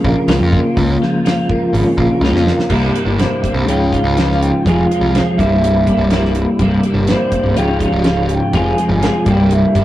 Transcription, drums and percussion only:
0.05 kick
0.28 snare, open hi-hat
0.53 kick
0.77 kick, open hi-hat
1.03 snare
1.26 snare, open hi-hat
1.49 kick
1.75 open hi-hat
1.98 kick
2.24 snare
2.36 snare
2.47 snare
2.59 snare
2.70 kick, crash
2.95 closed hi-hat
3.19 snare, closed hi-hat
3.44 kick, closed hi-hat
3.68 closed hi-hat
3.93 kick, closed hi-hat
4.17 snare, closed hi-hat
4.31 snare
4.42 closed hi-hat
4.66 kick, closed hi-hat
4.91 closed hi-hat
5.15 snare, closed hi-hat
5.39 kick, closed hi-hat
5.64 closed hi-hat
5.87 kick, closed hi-hat
6.10 snare, closed hi-hat
6.25 snare
6.35 closed hi-hat
6.59 kick, closed hi-hat
6.83 closed hi-hat
7.07 snare, closed hi-hat
7.32 kick, closed hi-hat
7.57 closed hi-hat
7.80 kick, closed hi-hat
8.04 snare, closed hi-hat
8.29 closed hi-hat
8.53 kick, closed hi-hat
8.78 closed hi-hat
9.03 snare, closed hi-hat
9.26 kick, closed hi-hat
9.51 closed hi-hat
9.75 kick, closed hi-hat

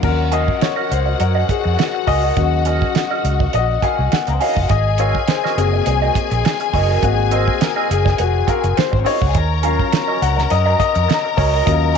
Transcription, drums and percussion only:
0.03 kick, crash
0.32 closed hi-hat
0.48 kick
0.61 snare, closed hi-hat
0.92 closed hi-hat
1.20 closed hi-hat
1.49 kick, closed hi-hat
1.79 snare, closed hi-hat
2.07 kick, open hi-hat
2.37 kick, closed hi-hat
2.65 closed hi-hat
2.82 kick
2.95 snare, closed hi-hat
3.25 closed hi-hat
3.40 kick
3.53 closed hi-hat
3.82 kick, closed hi-hat
4.12 snare, closed hi-hat
4.27 closed hi-hat
4.41 open hi-hat
4.57 kick
4.69 kick, closed hi-hat
4.98 closed hi-hat
5.15 kick
5.28 snare, closed hi-hat
5.45 snare
5.58 closed hi-hat
5.86 closed hi-hat
6.15 kick, closed hi-hat
6.31 closed hi-hat
6.45 snare, closed hi-hat
6.60 closed hi-hat
6.74 kick, open hi-hat
7.03 kick, closed hi-hat
7.31 closed hi-hat
7.48 kick
7.61 snare, closed hi-hat
7.91 closed hi-hat
8.06 kick, snare
8.18 closed hi-hat
8.48 kick, closed hi-hat
8.64 closed hi-hat
8.77 snare, closed hi-hat
8.93 kick
9.06 open hi-hat
9.22 kick
9.35 kick, closed hi-hat
9.63 closed hi-hat
9.79 kick
9.92 snare, closed hi-hat
10.22 closed hi-hat
10.38 snare
10.50 closed hi-hat
10.80 kick, closed hi-hat
10.95 closed hi-hat
11.10 snare, closed hi-hat
11.38 kick, open hi-hat
11.67 kick, closed hi-hat

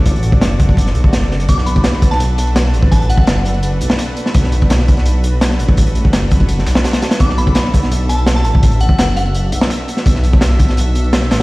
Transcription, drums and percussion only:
0.06 kick, closed hi-hat
0.16 closed hi-hat
0.23 closed hi-hat
0.32 kick
0.41 snare, closed hi-hat
0.60 kick, closed hi-hat
0.69 kick
0.77 kick, closed hi-hat
0.86 snare
0.95 closed hi-hat
1.04 kick
1.13 snare, closed hi-hat
1.22 snare
1.31 snare
1.40 closed hi-hat
1.49 kick, closed hi-hat
1.58 snare
1.67 closed hi-hat
1.76 kick, closed hi-hat
1.84 snare, closed hi-hat
1.93 snare
2.02 kick, closed hi-hat
2.11 snare, closed hi-hat
2.20 closed hi-hat
2.38 closed hi-hat
2.47 closed hi-hat
2.56 snare, closed hi-hat
2.65 snare
2.74 closed hi-hat
2.82 kick
2.92 kick, closed hi-hat
3.02 closed hi-hat
3.09 closed hi-hat
3.18 kick
3.27 snare, closed hi-hat
3.37 snare
3.45 closed hi-hat
3.54 closed hi-hat
3.63 closed hi-hat
3.81 closed hi-hat
3.90 snare
3.99 snare, closed hi-hat, open hi-hat
4.17 closed hi-hat
4.26 snare
4.34 kick, closed hi-hat
4.44 snare
4.52 closed hi-hat
4.61 kick, closed hi-hat
4.70 snare, closed hi-hat
4.79 snare
4.88 kick, closed hi-hat
4.97 snare, closed hi-hat
5.05 closed hi-hat
5.24 closed hi-hat
5.41 snare, closed hi-hat
5.50 snare
5.59 closed hi-hat
5.69 kick
5.77 kick, closed hi-hat
5.87 closed hi-hat
5.95 closed hi-hat
6.05 kick
6.13 snare, closed hi-hat
6.22 snare
6.31 kick, closed hi-hat
6.40 kick, closed hi-hat
6.49 closed hi-hat
6.58 snare
6.67 snare, closed hi-hat
6.75 snare
6.84 snare, closed hi-hat, open hi-hat
6.93 snare, closed hi-hat
7.02 snare, closed hi-hat
7.11 snare, closed hi-hat
7.20 kick, closed hi-hat
7.29 snare
7.38 closed hi-hat
7.47 kick, closed hi-hat
7.55 snare, closed hi-hat
7.65 snare
7.73 kick, closed hi-hat
7.83 snare, closed hi-hat
7.91 closed hi-hat
8.09 closed hi-hat
8.18 closed hi-hat
8.26 snare, closed hi-hat
8.36 snare
8.44 closed hi-hat
8.55 kick
8.63 kick, closed hi-hat
8.72 closed hi-hat
8.80 closed hi-hat
8.89 kick
8.99 snare, closed hi-hat
9.08 snare
9.17 closed hi-hat
9.26 closed hi-hat
9.35 closed hi-hat
9.52 closed hi-hat
9.61 snare
9.70 snare, closed hi-hat, open hi-hat
9.88 closed hi-hat
9.97 snare
10.06 kick, closed hi-hat
10.15 snare
10.24 closed hi-hat
10.33 kick, closed hi-hat
10.41 snare, closed hi-hat
10.50 snare
10.59 kick, closed hi-hat
10.69 snare, closed hi-hat
10.77 closed hi-hat
10.95 closed hi-hat
11.04 closed hi-hat
11.13 snare, closed hi-hat
11.22 snare
11.31 snare, closed hi-hat

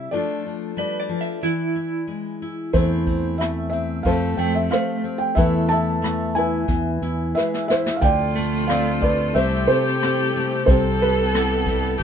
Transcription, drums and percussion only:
2.74 kick, closed hi-hat
3.07 kick, closed hi-hat
3.40 cross-stick, closed hi-hat
3.72 closed hi-hat
4.05 kick, closed hi-hat
4.38 closed hi-hat
4.71 cross-stick, closed hi-hat
5.04 closed hi-hat
5.37 kick, closed hi-hat
5.70 closed hi-hat
6.03 cross-stick, closed hi-hat
6.36 closed hi-hat
6.68 kick, closed hi-hat
7.02 closed hi-hat
7.37 snare
7.54 snare
7.70 snare
7.86 snare
8.02 kick, closed hi-hat
8.36 closed hi-hat
8.69 cross-stick, closed hi-hat
9.02 kick, closed hi-hat
9.36 closed hi-hat
9.69 closed hi-hat
10.02 cross-stick, closed hi-hat
10.35 closed hi-hat
10.68 kick, closed hi-hat
11.01 closed hi-hat
11.34 cross-stick, closed hi-hat
11.67 kick, closed hi-hat
12.00 closed hi-hat

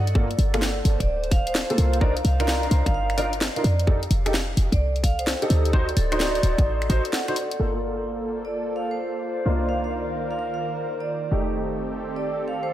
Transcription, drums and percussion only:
0.07 closed hi-hat
0.15 kick
0.31 closed hi-hat
0.39 open hi-hat
0.54 finger snap, closed hi-hat
0.62 snare
0.85 open hi-hat
1.00 kick, closed hi-hat
1.24 closed hi-hat
1.31 kick, open hi-hat
1.47 closed hi-hat
1.55 snare
1.70 closed hi-hat
1.78 open hi-hat
1.93 closed hi-hat
2.01 kick
2.17 closed hi-hat
2.25 open hi-hat
2.40 finger snap, closed hi-hat
2.48 snare
2.63 open hi-hat
2.71 open hi-hat
2.86 kick, closed hi-hat
3.10 finger snap, closed hi-hat
3.18 open hi-hat
3.33 closed hi-hat
3.41 snare
3.56 closed hi-hat
3.64 open hi-hat
3.80 closed hi-hat
3.87 kick
4.03 closed hi-hat
4.11 open hi-hat
4.26 finger snap, closed hi-hat
4.34 snare
4.57 open hi-hat
4.72 kick, closed hi-hat
4.96 closed hi-hat
5.04 kick, open hi-hat
5.19 closed hi-hat
5.27 snare
5.42 closed hi-hat
5.50 open hi-hat
5.65 closed hi-hat
5.73 kick
5.89 closed hi-hat
5.97 open hi-hat
6.12 finger snap, closed hi-hat
6.20 snare
6.35 open hi-hat
6.43 open hi-hat
6.58 kick, closed hi-hat
6.82 finger snap, closed hi-hat
6.90 kick, open hi-hat
7.05 closed hi-hat
7.13 snare
7.28 finger snap, closed hi-hat
7.36 open hi-hat
7.51 closed hi-hat

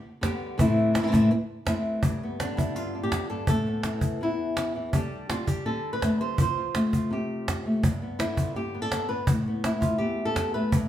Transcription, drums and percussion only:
0.23 cajon bass, cajon slap
0.59 cajon bass
0.77 cajon slap
0.95 cajon slap
1.14 cajon bass
1.32 cajon slap
1.67 cajon bass, cajon slap
2.03 cajon bass
2.40 cajon slap
2.58 cajon bass
3.12 cajon bass, cajon slap
3.30 cajon slap
3.47 cajon bass
3.66 cajon slap
3.83 cajon slap
4.01 cajon bass
4.57 cajon slap
4.75 cajon slap
4.93 cajon bass
5.12 cajon slap
5.30 cajon slap
5.47 cajon bass
6.02 cajon bass, cajon slap
6.20 cajon slap
6.38 cajon bass
6.75 cajon slap
6.93 cajon bass
7.11 cajon slap
7.48 cajon bass, cajon slap
7.67 cajon slap
7.83 cajon bass
8.20 cajon slap
8.37 cajon bass
8.92 cajon slap
9.09 cajon slap
9.27 cajon bass
9.46 cajon slap
9.64 cajon slap
9.82 cajon bass
10.36 cajon bass, cajon slap
10.72 cajon bass

